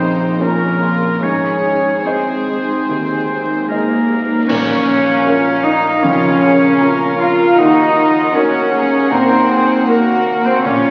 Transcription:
Already playing: double bass section A#1, felt piano F2 A#2 C#4 A#4 F5, harp A#2 F3 A#3 F4 A#4, viola section C#3 A#3, cello section C4, violin section D#4 C5, oboe C5
0.41 cello section A#3, felt piano C#4 F4 A#4, violin section C#4 A#4, harp A#4, oboe A#4
0.81 harp C#4, violin section F4
1.22 double bass section G#1, felt piano G#2, harp G#2, viola section G#3 D#4, cello section C#4, violin section G#4 C#5, oboe C#5
1.64 harp D#4
2.05 viola section G#3, cello section C4, felt piano D#4 G#4 D#5, oboe C5, violin section C5, harp D#5
2.49 harp D#4
2.89 felt piano D#2, harp D#3
3.30 viola section A#3, harp D#4
3.68 viola section G#3, cello section A#3, french horn section A#3, felt piano D#4 G#4 D#5, oboe A#4, flute A#4, harp D#5
4.11 harp D#4
4.48 double bass section A#1, felt piano A#2, harp A#2, cello section C#4, french horn section C#4, viola section A#4, oboe C#5, flute C#5, violin section F5, concert bass drum, crash
4.89 harp C#4
5.26 felt piano C#4 F4 A#4, harp A#4
5.64 harp C#4, cello section D#4, french horn section D#4, oboe D#5, flute D#5
6.03 felt piano F2, harp C#3, cello section C#4, french horn section C#4, violin section F4, oboe C#5, flute C#5
6.43 harp C#4, violin section G#4
6.81 felt piano C#4 F4 A#4, harp A#4, violin section A#4
7.19 harp C#4, cello section F4, french horn section F4, flute F5, oboe F5
7.57 double bass section D#2, felt piano D#2, harp D#3, cello section D#4, french horn section D#4, violin section F#4 F#5, flute D#5, oboe D#5
7.97 harp A#3, violin section F4
8.35 felt piano A#3 F#4 A#4, cello section C#4, french horn section C#4, violin section F#4, harp A#4, flute C#5, oboe C#5
8.73 harp A#3, violin section G#4
9.10 felt piano A#2, cello section C4, french horn section C4, harp D#4, violin section A#4, oboe C5, flute C5
9.49 harp A#3, violin section G#4
9.87 french horn section A#3, cello section A#3, felt piano A#3 F#4 A#4, violin section F#4, flute A#4, harp A#4, oboe A#4
10.26 harp A#3
10.45 french horn section C4, cello section C4, oboe C5, flute C5
10.64 double bass section A#1, harp A#2, felt piano A#2, cello section C#4, french horn section C#4, violin section F4 F5, viola section A#4, flute C#5, oboe C#5

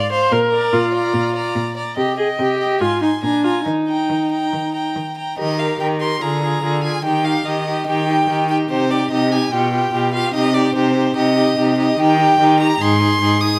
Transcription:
Already playing: cello G#2, viola D5, violin F5 C6
0.12 viola C5, violin F5 C6
0.32 cello A#2, viola A#4
0.53 violin D5 A#5
0.73 cello A#2, viola F4
0.94 violin D5 A#5
1.14 cello A#2
1.35 violin D5 A#5
1.56 cello A#2
1.77 violin D5 A#5
1.97 cello C3, viola G4, violin D#5 G5
2.18 viola G#4, violin D#5 G5
2.39 cello C3, viola G4
2.60 violin D#5 G5
2.81 cello G#2, viola F4, violin G#5 C6
3.02 viola D#4, violin G#5 C6
3.23 cello A#2, viola D4, violin G#5 A#5
3.44 viola F4, violin G#5 A#5
3.66 cello D#3, viola D#4
3.88 violin G5 A#5
4.10 cello D#3
4.31 violin G5 A#5
4.53 cello D#3
4.74 violin G5 A#5
4.96 cello D#3
5.17 violin G5 A#5
5.38 cello D#3, viola G4, violin A#4 D#5
5.59 viola G4, violin A#4 F5
5.79 cello D#3, viola G4, violin A#4 G5
6.01 viola G4, violin A#4 C6
6.21 cello D3, viola F4, violin G#4 A#5
6.43 viola F4, violin G#4
6.63 cello D3, viola F4, violin G#4
6.84 viola F4, violin G#4 G#5
7.04 cello D#3, viola D#4, violin G4 G5
7.24 viola D#4, violin G4 F5
7.45 cello D#3, viola D#4, violin G4 D#5
7.67 viola D#4, violin G4
7.86 cello D#3, viola D#4, violin G4 G5
8.09 viola D#4, violin G4
8.29 cello D#3, viola D#4, violin G4
8.50 viola D#4, violin G4 G5
8.70 cello C3, viola D#4, violin G4 C5
8.90 viola D#4, violin G4 D5
9.11 cello C3, viola D#4, violin G4 D#5
9.31 viola D#4, violin G4 G#5
9.52 cello B2, viola F4, violin G4 G5
9.73 viola F4, violin G4
9.93 cello B2, viola F4, violin G4
10.14 viola F4, violin G4 F5
10.34 cello C3, viola D#4, violin G4 D#5
10.54 viola D#4, violin G4 D5
10.74 cello C3, viola D#4, violin G4 C5
10.95 viola D#4, violin G4
11.15 cello C3, viola D#4, violin G4 D#5
11.36 viola D#4, violin G4
11.57 cello C3, viola D#4, violin G4
11.78 viola D#4, violin G4 D#5
11.98 cello D#3, viola D#4, violin G4 G5
12.20 viola D#4, violin G4
12.39 cello D#3, viola D#4, violin G4
12.60 viola D#4, violin G4 A#5
12.80 cello G#2, viola D#4, violin G#4 C6
13.00 viola D#4, violin G#4
13.21 cello G#2, viola D#4, violin G#4
13.41 viola D#4, violin G#4 D#6

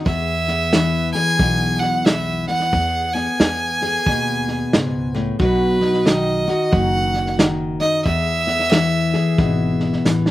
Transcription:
Already playing: steel-string acoustic guitar B3
0.05 upright bass E2, steel-string acoustic guitar E2 G#4, fiddle E5, kick, snare
0.48 steel-string acoustic guitar B3, snare
0.73 steel-string acoustic guitar E3, snare, hi-hat pedal
1.13 steel-string acoustic guitar G#4, fiddle G#5, snare
1.39 upright bass B1, steel-string acoustic guitar B2, kick, snare
1.80 fiddle F#5, snare
2.06 steel-string acoustic guitar E3, fiddle E5, snare, hi-hat pedal
2.47 steel-string acoustic guitar B3, fiddle F#5, snare
2.60 snare
2.73 upright bass E2, steel-string acoustic guitar G#4, kick, snare
3.13 steel-string acoustic guitar B3, fiddle G#5, snare
3.40 upright bass E2, snare, hi-hat pedal
3.81 steel-string acoustic guitar G#4, snare
4.06 upright bass D#2, steel-string acoustic guitar B2, kick, snare
4.48 snare
4.73 upright bass C#2, steel-string acoustic guitar G#2, snare, hi-hat pedal
5.14 steel-string acoustic guitar A2, snare
5.39 upright bass B1, steel-string acoustic guitar B2 F#4, fiddle B4, kick, snare
5.81 steel-string acoustic guitar D#4, snare
5.94 snare
6.06 steel-string acoustic guitar D#3, fiddle D#5, snare, hi-hat pedal
6.48 steel-string acoustic guitar F#4, snare
6.72 upright bass F#1, steel-string acoustic guitar F#2, fiddle F#5, kick, snare
7.14 snare
7.26 snare
7.39 steel-string acoustic guitar D#3, snare, hi-hat pedal
7.80 steel-string acoustic guitar D#4, fiddle D#5, snare
8.05 steel-string acoustic guitar E2 G#4, upright bass E2, fiddle E5, kick, snare
8.47 steel-string acoustic guitar B3, snare
8.59 snare
8.71 steel-string acoustic guitar E3, snare, hi-hat pedal
9.13 steel-string acoustic guitar G#4, snare
9.38 upright bass G#1, steel-string acoustic guitar B2, kick, snare
9.80 snare
9.93 snare
10.05 upright bass A1, steel-string acoustic guitar E3, snare, hi-hat pedal
10.26 snare

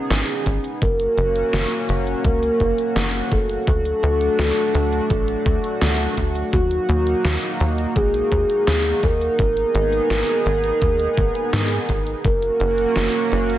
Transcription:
Already playing: analog synth pad B3 D#4 G#4, soft synth lead C#4
0.10 analog synth bass G#1, snare, closed hi-hat
0.28 closed hi-hat
0.46 analog synth bass G#1, kick, closed hi-hat
0.64 closed hi-hat
0.82 analog synth bass F#1, analog synth pad A#3 C#4 F#4, soft synth lead A#4, kick, closed hi-hat
1.00 closed hi-hat
1.17 analog synth bass F#1, closed hi-hat
1.35 closed hi-hat
1.53 analog synth bass F#1, snare, closed hi-hat
1.71 closed hi-hat
1.89 analog synth bass F#1, closed hi-hat
2.07 closed hi-hat
2.24 analog synth bass C#2, soft synth lead A#4, kick, closed hi-hat
2.43 closed hi-hat
2.60 analog synth bass F#1, kick
2.78 closed hi-hat
2.96 analog synth bass F#1, snare, closed hi-hat
3.14 closed hi-hat
3.32 analog synth bass F#1, soft synth lead A4, kick, closed hi-hat
3.50 closed hi-hat
3.67 analog synth bass D2, analog synth pad A3 D4, kick, closed hi-hat
3.85 closed hi-hat
4.03 analog synth bass D2, closed hi-hat
4.21 closed hi-hat
4.39 analog synth bass D2, snare, closed hi-hat
4.57 closed hi-hat
4.75 analog synth bass D2, closed hi-hat
4.92 closed hi-hat
5.10 analog synth bass A1, kick, closed hi-hat
5.28 closed hi-hat
5.46 analog synth bass D2, kick
5.64 closed hi-hat
5.81 analog synth bass D2, snare, closed hi-hat
6.00 closed hi-hat
6.17 analog synth bass D2, kick, closed hi-hat
6.35 closed hi-hat
6.53 analog synth bass D#2, analog synth pad A#3 D#4, soft synth lead F#4, kick, closed hi-hat
6.71 closed hi-hat
6.89 analog synth bass D#2, closed hi-hat
7.07 closed hi-hat
7.25 analog synth bass D#2, snare, closed hi-hat
7.42 closed hi-hat
7.60 analog synth bass D#2, closed hi-hat
7.78 closed hi-hat
7.96 analog synth bass A#1, soft synth lead G#4, kick, closed hi-hat
8.14 closed hi-hat
8.32 analog synth bass D#2, kick
8.50 closed hi-hat
8.67 analog synth bass D#2, snare, closed hi-hat
8.85 closed hi-hat
9.03 analog synth bass D#2, soft synth lead A#4, kick, closed hi-hat
9.21 closed hi-hat
9.39 analog synth bass G#1, analog synth pad B3 G#4, kick, closed hi-hat
9.57 closed hi-hat
9.75 analog synth bass G#1, closed hi-hat
9.92 closed hi-hat
10.10 analog synth bass G#1, snare, closed hi-hat
10.28 closed hi-hat
10.46 analog synth bass G#1, closed hi-hat
10.64 closed hi-hat
10.82 analog synth bass D#2, kick, closed hi-hat
10.99 closed hi-hat
11.17 analog synth bass G#1, kick
11.35 closed hi-hat
11.53 analog synth bass G#2, snare, closed hi-hat
11.71 closed hi-hat
11.89 analog synth bass G#1, kick, closed hi-hat
12.07 closed hi-hat
12.24 analog synth bass F#1, analog synth pad A#3 C#4 F#4, soft synth lead A#4, kick, closed hi-hat
12.42 closed hi-hat
12.60 analog synth bass F#1, closed hi-hat
12.78 closed hi-hat
12.96 analog synth bass F#1, snare, closed hi-hat
13.14 closed hi-hat
13.32 analog synth bass F#1, closed hi-hat
13.50 closed hi-hat

